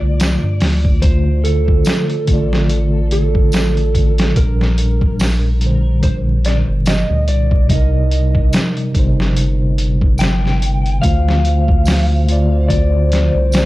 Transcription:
0.00 0.37 C2 medium
0.00 0.97 D3 medium
0.00 0.98 A3 medium
0.00 0.99 F4 medium
0.00 1.00 D5 medium
0.00 1.07 D5 medium
0.20 snare loud
0.20 closed hi-hat medium
0.20 tambourine medium
0.43 0.62 G2 medium
0.61 1.82 D2 loud
0.61 snare medium
0.61 open hi-hat medium
0.85 kick medium
1.00 2.22 D3 medium
1.00 2.24 A3 medium
1.00 1.45 C5 loud
1.00 kick loud
1.00 closed hi-hat medium
1.05 2.25 F4 medium
1.05 2.26 C5 medium
1.44 3.11 A4 medium
1.44 closed hi-hat medium
1.68 kick medium
1.85 snare loud
1.85 closed hi-hat medium
1.85 tambourine medium
2.10 closed hi-hat soft
2.25 4.33 A1 medium
2.25 4.30 D3 medium
2.25 4.32 A3 medium
2.25 kick medium
2.25 closed hi-hat medium
2.31 4.33 F4 medium
2.31 4.34 D5 medium
2.53 snare medium
2.70 closed hi-hat medium
3.11 4.37 A4 medium
3.11 closed hi-hat medium
3.35 kick medium
3.52 snare loud
3.52 closed hi-hat medium
3.52 tambourine medium
3.77 closed hi-hat soft
3.95 kick medium
3.95 closed hi-hat medium
4.18 snare medium
4.18 closed hi-hat medium
4.33 6.63 A#1 medium
4.33 5.55 A#2 medium
4.33 5.56 G3 medium
4.33 5.99 A#4 loud
4.33 kick loud
4.33 closed hi-hat medium
4.38 5.58 D4 medium
4.38 5.59 A#4 medium
4.61 snare soft
4.78 closed hi-hat medium
5.01 kick medium
5.19 snare loud
5.19 open hi-hat medium
5.19 tambourine medium
5.59 7.64 A#2 medium
5.59 7.65 G3 medium
5.59 closed hi-hat medium
5.64 7.66 D3 medium
5.64 7.68 C5 medium
6.03 6.15 C5 medium
6.03 kick loud
6.03 closed hi-hat medium
6.45 6.57 D5 loud
6.45 snare soft
6.45 closed hi-hat medium
6.68 7.04 G1 medium
6.85 7.28 D#5 loud
6.85 snare loud
6.85 closed hi-hat medium
6.85 tambourine medium
7.10 7.29 D2 medium
7.28 8.49 C2 medium
7.28 7.70 D5 medium
7.28 closed hi-hat medium
7.51 kick medium
7.67 8.89 C3 medium
7.67 8.90 G3 medium
7.67 8.49 D#5 medium
7.67 kick loud
7.67 closed hi-hat medium
7.72 8.91 D#4 medium
7.72 8.93 A#4 medium
8.11 closed hi-hat medium
8.35 kick medium
8.53 snare loud
8.53 closed hi-hat medium
8.53 tambourine medium
8.77 closed hi-hat soft
8.91 10.99 G1 medium
8.91 10.97 C3 medium
8.91 10.98 G3 medium
8.91 kick medium
8.91 closed hi-hat medium
8.96 10.99 D#4 medium
8.96 11.01 C5 medium
9.20 snare medium
9.37 closed hi-hat medium
9.78 closed hi-hat medium
10.01 kick medium
10.18 11.01 G5 loud
10.18 snare loud
10.18 closed hi-hat medium
10.18 tambourine medium
10.45 snare soft
10.62 closed hi-hat medium
10.86 closed hi-hat soft
10.99 12.21 D3 medium
10.99 12.23 A3 medium
10.99 13.65 C5 medium
10.99 12.74 F5 loud
10.99 kick loud
11.03 13.30 D2 loud
11.03 12.24 F4 medium
11.03 12.25 C5 medium
11.03 closed hi-hat medium
11.28 snare soft
11.45 closed hi-hat medium
11.68 kick medium
11.85 snare loud
11.85 open hi-hat medium
11.85 tambourine medium
12.24 13.65 D3 medium
12.24 13.65 A3 medium
12.28 13.65 F4 medium
12.28 13.65 D5 medium
12.28 closed hi-hat medium
12.68 13.65 D5 medium
12.68 kick medium
12.68 closed hi-hat medium
13.12 snare medium
13.12 closed hi-hat medium
13.35 13.65 C2 medium
13.52 snare loud
13.52 closed hi-hat medium
13.52 tambourine medium

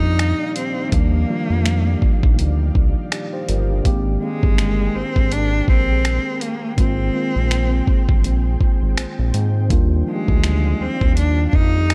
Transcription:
0.00 0.34 F2 medium
0.00 3.87 A#2 medium
0.00 0.92 F3 medium
0.00 0.93 A#3 medium
0.00 0.94 D4 loud
0.00 0.57 D#4 loud
0.00 3.81 D#4 medium
0.00 3.86 D#4 medium
0.00 3.13 G4 medium
0.00 3.81 G4 medium
0.00 3.81 D5 medium
0.00 3.81 F5 medium
0.19 finger snap loud
0.19 closed hi-hat medium
0.56 0.90 C4 medium
0.56 closed hi-hat medium
0.88 1.18 D#3 medium
0.88 1.19 F3 medium
0.88 0.95 A3 medium
0.88 closed hi-hat medium
0.92 1.25 D#2 loud
0.92 1.19 G3 medium
0.92 1.20 A#3 medium
0.92 2.40 A#3 medium
0.92 1.20 D4 medium
0.92 kick loud
1.27 2.29 D#3 medium
1.27 2.29 F3 medium
1.27 2.30 G3 medium
1.27 2.30 A#3 medium
1.27 2.31 F4 medium
1.50 1.96 F2 medium
1.66 finger snap loud
1.66 closed hi-hat medium
2.02 2.11 A#1 soft
2.02 kick medium
2.23 2.41 A#1 medium
2.23 kick medium
2.39 2.71 D2 medium
2.39 closed hi-hat medium
2.75 2.94 C2 medium
2.75 kick medium
3.12 3.32 G4 medium
3.12 3.32 D5 medium
3.12 finger snap loud
3.12 closed hi-hat medium
3.33 3.48 G4 medium
3.33 3.48 C5 medium
3.49 3.81 G1 medium
3.49 3.69 F4 medium
3.49 3.69 A#4 medium
3.49 closed hi-hat medium
3.70 4.05 D4 medium
3.70 3.86 G4 medium
3.84 4.17 G#1 loud
3.84 4.11 D#3 medium
3.84 4.11 G#3 medium
3.84 4.12 A#3 medium
3.84 9.67 C4 medium
3.84 4.12 C4 medium
3.84 4.13 G4 loud
3.84 9.67 G#4 medium
3.84 6.75 A#4 medium
3.84 9.67 G5 medium
3.84 kick medium
3.84 closed hi-hat medium
4.20 5.22 D#3 medium
4.20 5.22 G#3 medium
4.20 4.97 G#3 medium
4.20 5.23 A#3 medium
4.20 5.23 C4 medium
4.20 5.24 G#4 medium
4.43 4.89 G1 medium
4.43 kick medium
4.58 finger snap loud
4.58 closed hi-hat medium
4.95 5.04 G#1 soft
4.95 5.34 C4 loud
5.16 5.62 G#1 medium
5.16 kick medium
5.32 5.68 D4 loud
5.32 closed hi-hat medium
5.68 6.19 A#1 medium
5.68 6.43 C4 loud
5.68 kick medium
6.05 finger snap loud
6.05 closed hi-hat medium
6.41 6.78 A#3 medium
6.41 closed hi-hat medium
6.76 7.10 G#1 loud
6.76 7.04 D#3 medium
6.76 7.04 G#3 medium
6.76 7.05 A#3 medium
6.76 8.21 C4 medium
6.76 7.05 C4 medium
6.76 7.05 F4 medium
6.76 9.67 C5 medium
6.76 kick loud
6.76 closed hi-hat medium
7.13 8.15 D#3 medium
7.13 8.15 G#3 medium
7.13 8.15 A#3 medium
7.13 8.16 C4 medium
7.13 8.16 F4 medium
7.36 7.81 A#1 medium
7.51 finger snap loud
7.51 closed hi-hat medium
7.87 7.96 G1 soft
7.87 kick medium
8.09 8.22 G1 medium
8.09 kick medium
8.24 8.56 A#1 medium
8.24 closed hi-hat medium
8.61 8.69 G#1 soft
8.61 kick medium
8.82 8.96 G#1 medium
8.97 9.06 A#1 soft
8.97 finger snap loud
8.97 closed hi-hat medium
9.19 9.32 A#1 medium
9.34 9.72 G#2 medium
9.34 closed hi-hat medium
9.69 10.03 D#2 loud
9.69 9.96 D#3 medium
9.69 9.97 G3 medium
9.69 9.97 A#3 medium
9.69 9.98 D4 medium
9.69 11.94 F4 medium
9.69 9.98 F4 medium
9.69 11.94 G4 medium
9.69 11.94 D5 medium
9.69 11.94 F5 medium
9.69 kick loud
9.69 closed hi-hat medium
10.06 11.08 F3 medium
10.06 10.83 G#3 medium
10.06 11.08 A#3 medium
10.06 11.09 D4 medium
10.06 11.07 D#4 medium
10.06 10.16 F4 medium
10.15 11.12 G4 medium
10.28 10.74 D2 medium
10.28 kick medium
10.44 finger snap loud
10.44 closed hi-hat medium
10.80 10.89 D#2 soft
10.80 11.18 C4 medium
11.01 11.47 D#2 medium
11.01 kick medium
11.17 11.46 D4 loud
11.17 closed hi-hat medium
11.49 11.57 D4 medium
11.53 11.94 F2 medium
11.53 11.94 D#4 loud
11.53 kick medium
11.90 finger snap loud
11.90 closed hi-hat medium

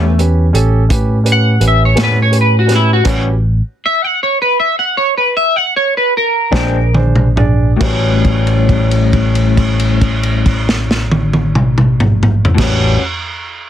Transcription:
0.00 0.50 E2 loud
0.00 0.19 A3 medium
0.00 0.10 G4 soft
0.00 0.11 B4 medium
0.18 0.45 C#4 medium
0.18 0.46 G4 soft
0.18 0.46 B4 medium
0.18 closed hi-hat soft
0.53 0.87 A1 medium
0.53 0.81 C#4 medium
0.53 0.81 G4 medium
0.53 0.81 A4 medium
0.53 closed hi-hat medium
0.89 1.57 A2 medium
0.89 1.16 C#4 medium
0.89 1.17 G4 medium
0.89 1.17 B4 medium
0.89 kick loud
0.89 closed hi-hat medium
1.24 1.52 C#4 medium
1.24 1.52 G4 soft
1.24 1.52 B4 medium
1.24 closed hi-hat medium
1.32 1.64 F#5 medium
1.60 1.94 A1 medium
1.60 1.88 C#4 soft
1.60 1.88 G4 soft
1.60 1.88 B4 medium
1.60 closed hi-hat medium
1.68 1.82 E5 medium
1.85 2.00 C#5 medium
1.94 3.01 A2 loud
1.94 2.19 A2 soft
1.94 2.19 G3 medium
1.94 2.18 B3 medium
1.94 2.23 C#4 medium
1.94 2.18 C#4 medium
1.94 2.23 G4 soft
1.94 2.23 B4 medium
1.94 snare medium
1.94 closed hi-hat medium
2.04 2.18 B4 medium
2.22 2.36 C#5 medium
2.31 2.59 C#4 soft
2.31 2.59 G4 soft
2.31 2.60 B4 medium
2.31 closed hi-hat medium
2.41 2.55 B4 medium
2.59 2.73 F#4 medium
2.66 2.95 C#4 medium
2.66 2.96 G4 soft
2.66 2.96 B4 medium
2.66 snare soft
2.66 closed hi-hat medium
2.75 2.90 E4 medium
2.93 3.08 F#4 medium
3.04 3.60 A1 medium
3.04 3.27 A2 medium
3.04 3.28 G3 medium
3.04 3.32 C#4 medium
3.04 3.28 C#4 medium
3.04 3.32 F#4 medium
3.04 3.28 F#4 medium
3.04 3.32 G4 medium
3.04 3.32 B4 medium
3.04 kick medium
3.04 closed hi-hat medium
3.04 crash medium
3.86 4.00 E5 loud
4.04 4.19 F#5 medium
4.23 4.38 C#5 medium
4.42 4.57 B4 medium
4.60 4.76 E5 medium
4.79 4.95 F#5 medium
4.97 5.14 C#5 medium
5.17 5.34 B4 medium
5.37 5.56 E5 medium
5.56 5.73 F#5 medium
5.76 5.93 C#5 loud
5.97 6.14 B4 medium
6.17 6.95 A#4 medium
6.51 7.77 A#1 loud
6.51 6.78 A#2 medium
6.51 6.77 G#3 medium
6.51 6.77 C4 medium
6.51 6.83 D4 medium
6.51 6.77 D4 medium
6.51 6.84 G#4 medium
6.51 6.84 C5 medium
6.51 kick medium
6.51 snare medium
6.93 7.26 D4 medium
6.93 7.26 G#4 medium
6.93 7.27 C5 medium
6.93 high tom medium
7.16 mid tom medium
7.36 7.69 D4 medium
7.36 7.70 G#4 medium
7.36 7.70 D5 medium
7.36 mid tom medium
7.77 12.44 A1 medium
7.77 12.46 A2 medium
7.77 12.42 F#4 medium
7.77 12.43 G4 medium
7.77 12.44 B4 medium
7.77 crash medium
7.81 12.48 G3 medium
7.81 12.45 C#5 medium
7.81 kick medium
7.85 12.50 C#4 medium
8.24 kick medium
8.24 crash soft
8.47 crash soft
8.69 kick medium
8.69 crash soft
8.91 crash soft
9.13 kick medium
9.13 crash soft
9.35 crash soft
9.57 kick medium
9.57 crash soft
9.79 crash soft
10.01 kick medium
10.01 crash soft
10.23 crash soft
10.46 kick medium
10.46 crash medium
10.69 snare medium
10.91 snare medium
11.11 high tom medium
11.33 high tom medium
11.55 mid tom medium
11.78 mid tom medium
12.00 mid tom medium
12.23 mid tom medium
12.45 floor tom medium
12.55 12.95 A1 medium
12.55 12.96 A2 medium
12.55 12.95 F#4 medium
12.55 12.95 G4 medium
12.55 kick medium
12.55 crash loud
12.59 12.99 G3 medium
12.59 13.01 C#4 medium
12.59 12.96 B4 medium
12.59 12.97 C#5 medium
12.59 snare medium
12.66 13.02 F#4 medium

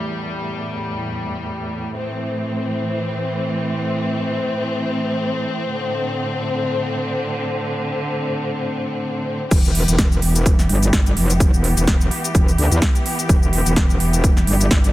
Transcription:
0.00 1.91 E2 medium
0.00 9.47 A2 medium
0.00 1.91 G3 medium
1.95 5.70 E3 medium
1.95 9.47 C4 medium
5.73 9.47 D3 medium
9.51 9.86 E1 loud
9.51 14.93 E3 medium
9.51 14.93 B3 medium
9.51 14.93 G4 medium
9.51 kick loud
9.51 closed hi-hat medium
9.51 crash loud
9.51 shaker medium
9.65 shaker soft
9.75 open hi-hat loud
9.88 10.20 E1 loud
9.88 closed hi-hat medium
9.88 shaker medium
9.98 kick loud
9.98 snare loud
9.98 closed hi-hat medium
9.98 shaker medium
10.12 shaker soft
10.22 10.68 E1 loud
10.22 open hi-hat loud
10.35 closed hi-hat medium
10.35 shaker medium
10.46 kick loud
10.46 closed hi-hat medium
10.46 shaker medium
10.59 snare soft
10.59 shaker soft
10.69 10.91 G1 loud
10.69 open hi-hat loud
10.83 closed hi-hat medium
10.83 shaker medium
10.93 11.15 G1 loud
10.93 kick loud
10.93 snare loud
10.93 closed hi-hat medium
10.93 shaker medium
11.06 closed hi-hat soft
11.06 shaker soft
11.17 11.51 F1 medium
11.17 open hi-hat loud
11.30 closed hi-hat medium
11.30 shaker medium
11.40 kick loud
11.40 closed hi-hat medium
11.40 shaker medium
11.53 11.75 E1 loud
11.53 shaker soft
11.64 open hi-hat loud
11.77 12.09 E1 loud
11.77 closed hi-hat medium
11.77 shaker medium
11.87 kick loud
11.87 snare loud
11.87 closed hi-hat medium
11.87 shaker medium
12.01 shaker soft
12.11 open hi-hat loud
12.24 closed hi-hat medium
12.24 shaker medium
12.35 12.57 E1 loud
12.35 kick loud
12.35 closed hi-hat medium
12.35 shaker medium
12.48 shaker soft
12.58 12.69 D2 loud
12.58 open hi-hat loud
12.72 12.80 E2 loud
12.72 closed hi-hat medium
12.72 shaker medium
12.82 kick loud
12.82 snare loud
12.82 closed hi-hat medium
12.82 shaker medium
12.95 closed hi-hat soft
12.95 shaker soft
13.06 open hi-hat loud
13.19 closed hi-hat medium
13.19 shaker medium
13.29 13.64 E1 loud
13.29 kick loud
13.29 closed hi-hat medium
13.29 shaker medium
13.43 shaker soft
13.53 open hi-hat loud
13.66 13.98 E1 loud
13.66 closed hi-hat medium
13.66 shaker medium
13.76 kick loud
13.76 snare loud
13.76 closed hi-hat medium
13.76 shaker medium
13.90 shaker soft
14.00 14.46 E1 medium
14.00 open hi-hat loud
14.13 closed hi-hat medium
14.13 shaker medium
14.24 kick loud
14.24 closed hi-hat medium
14.24 shaker medium
14.37 snare soft
14.37 shaker soft
14.47 14.69 G1 medium
14.47 open hi-hat loud
14.61 closed hi-hat medium
14.61 shaker medium
14.71 14.93 G1 loud
14.71 kick loud
14.71 snare loud
14.71 closed hi-hat medium
14.71 shaker medium
14.84 closed hi-hat soft
14.84 shaker soft

